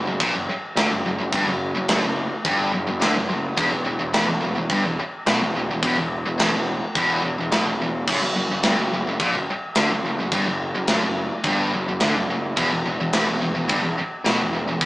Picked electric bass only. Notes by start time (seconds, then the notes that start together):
0.07 F#1
0.20 A#1
0.35 F#1
0.49 muted picked electric bass stroke
0.76 D2
0.91 F#1
1.05 F#1
1.19 F#1
1.33 G1
1.46 F#1
1.74 F#1
1.89 F#1
2.03 F#1
2.45 G1
2.75 F#1
2.90 F#1
3.04 D2
3.17 F#1
3.33 F#1
3.57 E1
3.73 E1
3.86 E1
4.00 E1
4.15 E1
4.29 E1
4.44 E1
4.58 E1
4.69 G1
4.87 E1
5.00 muted picked electric bass stroke
5.26 B1
5.42 E1
5.56 E1
5.71 E1
5.83 E1
6.00 E1
6.27 E1
6.40 E1
6.54 E1
6.95 E1
7.24 E1
7.38 E1
7.51 B1
7.65 E1
7.80 E1
8.07 F#1
8.22 F#1
8.36 F#1
8.50 F#1
8.64 G1
8.78 F#1
8.93 F#1
9.06 F#1
9.19 A#1
9.33 F#1
9.47 muted picked electric bass stroke
9.77 D2
9.90 F#1
10.04 F#1
10.18 F#1
10.32 G1
10.46 F#1
10.74 F#1
10.88 F#1
11.03 F#1
11.44 G1
11.74 F#1
11.88 F#1
12.03 D2
12.15 F#1
12.28 F#1
12.57 E1
12.71 E1
12.86 E1
12.99 E1
13.14 E1
13.28 E1
13.42 E1
13.56 E1
13.69 G1
13.83 E1
13.98 muted picked electric bass stroke
14.24 B1
14.38 E1
14.52 E1
14.67 E1
14.80 E1